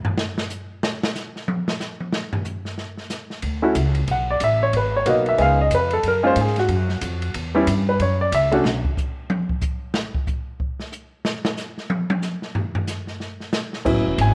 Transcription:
0.05 floor tom loud
0.18 snare loud
0.38 snare medium
0.50 hi-hat pedal medium
0.83 snare loud
1.03 snare loud
1.15 snare medium
1.15 hi-hat pedal medium
1.36 snare soft
1.48 high tom loud
1.68 snare loud
1.80 snare medium
1.80 hi-hat pedal medium
2.00 high tom medium
2.13 snare loud
2.33 floor tom loud
2.45 floor tom soft
2.45 hi-hat pedal medium
2.65 snare soft
2.78 snare medium
2.98 snare soft
3.10 snare medium
3.10 hi-hat pedal medium
3.30 snare soft
3.42 3.75 D2 medium
3.42 kick soft
3.42 ride medium
3.62 3.74 A3 medium
3.62 3.74 C#4 medium
3.62 3.75 E4 medium
3.62 3.75 F#4 medium
3.75 4.07 C#2 loud
3.75 kick soft
3.75 hi-hat pedal medium
3.75 ride medium
3.95 ride medium
4.08 4.40 B1 medium
4.08 4.29 F#5 medium
4.08 kick soft
4.08 ride medium
4.31 4.42 D5 medium
4.40 4.72 A1 medium
4.40 4.62 E5 medium
4.40 kick soft
4.40 hi-hat pedal medium
4.40 ride medium
4.63 4.74 C#5 medium
4.73 5.05 G#1 medium
4.73 4.95 B4 medium
4.73 kick soft
4.73 ride medium
4.96 5.07 C#5 medium
5.06 5.38 B1 medium
5.06 5.37 A#3 medium
5.06 5.37 B3 medium
5.06 5.37 D#4 medium
5.06 5.38 F#4 medium
5.06 5.27 D#5 medium
5.06 kick soft
5.06 hi-hat pedal medium
5.06 ride medium
5.26 5.40 E5 medium
5.26 ride medium
5.38 5.70 C#2 medium
5.38 5.56 G#3 medium
5.38 5.56 B3 medium
5.38 5.57 D#4 medium
5.38 5.57 G#4 medium
5.38 5.60 F5 loud
5.38 kick soft
5.38 ride medium
5.61 5.72 D#5 medium
5.71 6.03 F2 medium
5.71 5.92 B4 medium
5.71 kick soft
5.71 hi-hat pedal medium
5.71 ride medium
5.90 6.04 A4 medium
5.90 ride medium
6.03 6.35 F#2 medium
6.03 kick soft
6.03 ride medium
6.08 6.25 A#4 medium
6.23 6.35 G#3 medium
6.23 6.35 A#3 medium
6.23 6.35 C#4 medium
6.23 6.35 F4 medium
6.23 6.37 C5 loud
6.36 6.68 G#2 loud
6.36 kick soft
6.36 hi-hat pedal medium
6.36 ride medium
6.41 6.58 G#4 medium
6.47 snare soft
6.56 7.31 F#4 medium
6.56 snare soft
6.56 ride medium
6.68 7.00 F#2 medium
6.68 kick soft
6.68 ride medium
6.89 snare soft
7.01 7.33 F2 loud
7.01 kick soft
7.01 hi-hat pedal medium
7.01 ride medium
7.22 ride medium
7.34 7.66 E2 medium
7.34 kick soft
7.34 ride medium
7.55 7.66 G3 medium
7.55 7.66 B3 medium
7.55 7.66 C#4 medium
7.55 7.66 E4 medium
7.67 7.98 G2 loud
7.67 kick soft
7.67 hi-hat pedal medium
7.67 ride medium
7.89 8.00 B4 medium
8.00 8.31 F#2 medium
8.00 8.20 C#5 medium
8.00 kick soft
8.00 ride medium
8.21 8.32 D5 loud
8.32 8.63 C#2 medium
8.32 8.46 E5 loud
8.32 kick soft
8.32 hi-hat pedal medium
8.32 ride medium
8.52 8.63 A3 medium
8.52 8.63 C#4 medium
8.52 8.63 D4 medium
8.52 8.64 F#4 medium
8.52 ride medium
8.64 8.83 B1 medium
8.64 snare loud
8.85 kick medium
8.97 kick medium
8.97 hi-hat pedal medium
9.30 high tom loud
9.50 kick medium
9.62 kick medium
9.62 hi-hat pedal medium
9.94 snare loud
10.15 kick medium
10.27 kick medium
10.27 hi-hat pedal medium
10.60 kick medium
10.80 snare soft
10.92 hi-hat pedal medium
11.25 snare loud
11.45 snare loud
11.57 snare soft
11.57 hi-hat pedal medium
11.78 snare soft
11.90 high tom loud
12.10 high tom loud
12.22 snare soft
12.22 hi-hat pedal medium
12.42 snare medium
12.55 floor tom loud
12.75 floor tom loud
12.87 snare medium
12.87 hi-hat pedal medium
13.07 snare soft
13.20 snare soft
13.40 snare soft
13.53 snare loud
13.53 hi-hat pedal medium
13.73 snare medium
13.85 13.98 A1 medium
13.85 14.34 F#3 medium
13.85 14.34 B3 medium
13.85 14.34 C#4 medium
13.85 14.34 E4 medium
13.85 kick medium
13.85 crash medium
13.96 14.07 F#1 medium
14.07 14.17 E1 medium
14.18 14.34 G#1 loud
14.18 14.34 G#5 medium
14.18 kick soft
14.18 hi-hat pedal medium
14.18 ride medium

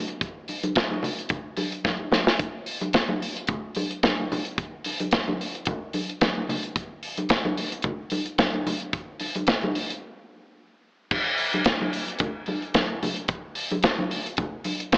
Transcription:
0.08 closed hi-hat soft
0.21 kick loud
0.21 closed hi-hat medium
0.48 open hi-hat medium
0.48 muted conga soft
0.63 closed hi-hat soft
0.63 high conga medium
0.75 kick loud
0.75 snare loud
0.75 closed hi-hat medium
0.91 high conga medium
1.03 open hi-hat medium
1.03 muted conga soft
1.03 low conga medium
1.19 closed hi-hat soft
1.29 kick loud
1.29 closed hi-hat medium
1.29 muted conga soft
1.29 low conga medium
1.57 open hi-hat medium
1.57 muted conga soft
1.57 high conga medium
1.72 closed hi-hat soft
1.84 kick loud
1.84 snare medium
1.84 muted conga soft
1.84 high conga medium
1.99 high conga medium
2.12 snare medium
2.12 muted conga soft
2.12 high conga medium
2.12 low conga medium
2.27 snare medium
2.39 kick medium
2.39 closed hi-hat medium
2.39 muted conga soft
2.66 open hi-hat medium
2.81 closed hi-hat soft
2.81 high conga medium
2.93 kick loud
2.93 snare loud
2.93 closed hi-hat medium
2.93 muted conga soft
3.09 high conga medium
3.22 open hi-hat medium
3.22 muted conga soft
3.37 closed hi-hat soft
3.47 kick loud
3.47 closed hi-hat medium
3.47 low conga medium
3.75 open hi-hat medium
3.75 muted conga soft
3.75 high conga medium
3.91 closed hi-hat soft
4.03 kick loud
4.03 snare loud
4.03 closed hi-hat medium
4.03 high conga medium
4.19 high conga medium
4.32 open hi-hat medium
4.32 muted conga soft
4.32 high conga medium
4.32 low conga medium
4.45 closed hi-hat soft
4.58 kick loud
4.58 closed hi-hat medium
4.84 open hi-hat medium
4.84 muted conga soft
5.00 closed hi-hat soft
5.00 high conga medium
5.11 kick loud
5.11 snare loud
5.11 closed hi-hat medium
5.28 high conga medium
5.41 open hi-hat medium
5.55 closed hi-hat soft
5.65 kick loud
5.65 closed hi-hat medium
5.65 muted conga soft
5.65 low conga medium
5.93 open hi-hat medium
5.93 high conga medium
6.09 closed hi-hat soft
6.21 kick loud
6.21 snare loud
6.21 closed hi-hat medium
6.21 high conga medium
6.37 high conga medium
6.49 open hi-hat medium
6.49 high conga medium
6.49 low conga medium
6.63 closed hi-hat soft
6.76 kick medium
6.76 closed hi-hat medium
7.03 open hi-hat medium
7.17 closed hi-hat soft
7.17 high conga medium
7.29 kick loud
7.29 snare loud
7.29 closed hi-hat medium
7.45 high conga medium
7.57 open hi-hat medium
7.57 muted conga soft
7.72 closed hi-hat soft
7.82 kick loud
7.82 closed hi-hat medium
7.82 muted conga soft
7.82 low conga medium
8.10 open hi-hat medium
8.10 high conga medium
8.26 closed hi-hat soft
8.38 kick loud
8.38 snare loud
8.38 closed hi-hat medium
8.38 muted conga soft
8.38 high conga medium
8.54 high conga medium
8.67 open hi-hat medium
8.67 muted conga soft
8.67 high conga medium
8.67 low conga medium
8.80 closed hi-hat soft
8.93 kick medium
8.93 closed hi-hat medium
9.20 open hi-hat medium
9.20 muted conga soft
9.35 closed hi-hat soft
9.35 high conga medium
9.47 kick loud
9.47 snare loud
9.47 closed hi-hat medium
9.63 high conga medium
9.75 open hi-hat medium
9.75 muted conga soft
9.90 closed hi-hat medium
11.11 kick loud
11.11 crash medium
11.11 muted conga soft
11.37 open hi-hat medium
11.53 closed hi-hat soft
11.53 high conga medium
11.64 kick loud
11.64 snare loud
11.64 closed hi-hat medium
11.64 muted conga soft
11.81 high conga medium
11.93 open hi-hat medium
12.08 closed hi-hat soft
12.19 kick loud
12.19 closed hi-hat medium
12.19 muted conga soft
12.19 low conga medium
12.46 open hi-hat medium
12.46 high conga medium
12.62 closed hi-hat soft
12.74 kick loud
12.74 snare loud
12.74 closed hi-hat medium
12.74 high conga medium
13.03 open hi-hat medium
13.03 muted conga soft
13.03 high conga medium
13.03 low conga medium
13.16 closed hi-hat soft
13.28 kick loud
13.28 closed hi-hat medium
13.55 open hi-hat medium
13.71 closed hi-hat soft
13.71 high conga medium
13.83 kick loud
13.83 snare loud
13.83 closed hi-hat medium
13.83 muted conga soft
13.99 high conga medium
14.11 open hi-hat medium
14.11 muted conga soft
14.26 closed hi-hat soft
14.37 kick loud
14.37 closed hi-hat medium
14.37 muted conga soft
14.37 low conga medium
14.64 open hi-hat medium
14.64 high conga medium
14.80 closed hi-hat medium
14.92 kick loud
14.92 snare loud
14.92 closed hi-hat medium
14.92 muted conga soft
14.92 high conga medium

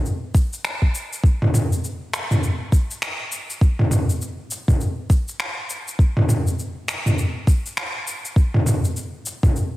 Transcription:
0.06 shaker soft
0.35 kick loud
0.35 shaker medium
0.53 shaker soft
0.65 finger snap medium
0.65 shaker soft
0.82 kick medium
0.95 shaker medium
1.13 shaker soft
1.24 kick loud
1.24 shaker soft
1.42 mid tom medium
1.54 mid tom medium
1.54 shaker medium
1.72 shaker soft
1.84 shaker soft
2.13 finger snap medium
2.13 shaker medium
2.31 mid tom medium
2.31 shaker soft
2.43 shaker soft
2.72 kick loud
2.72 shaker medium
2.91 shaker soft
3.02 finger snap medium
3.02 shaker soft
3.32 shaker medium
3.50 shaker soft
3.61 kick loud
3.61 shaker soft
3.79 mid tom medium
3.91 mid tom medium
3.91 shaker medium
4.09 shaker soft
4.21 shaker soft
4.51 shaker medium
4.68 kick loud
4.68 mid tom medium
4.68 shaker soft
4.81 shaker soft
5.10 kick loud
5.10 shaker medium
5.28 shaker soft
5.40 finger snap medium
5.40 shaker soft
5.70 shaker medium
5.88 shaker soft
5.99 kick loud
5.99 shaker soft
6.17 mid tom medium
6.29 mid tom medium
6.29 shaker medium
6.47 shaker soft
6.59 shaker soft
6.88 finger snap medium
6.88 shaker medium
7.06 mid tom medium
7.06 shaker soft
7.18 shaker soft
7.47 kick loud
7.47 shaker medium
7.66 shaker soft
7.77 finger snap medium
7.77 shaker soft
8.08 shaker medium
8.25 shaker soft
8.36 kick loud
8.36 shaker soft
8.54 mid tom medium
8.66 mid tom medium
8.66 shaker medium
8.85 shaker soft
8.96 shaker soft
9.26 shaker medium
9.43 kick loud
9.43 mid tom medium
9.43 shaker soft
9.56 shaker soft

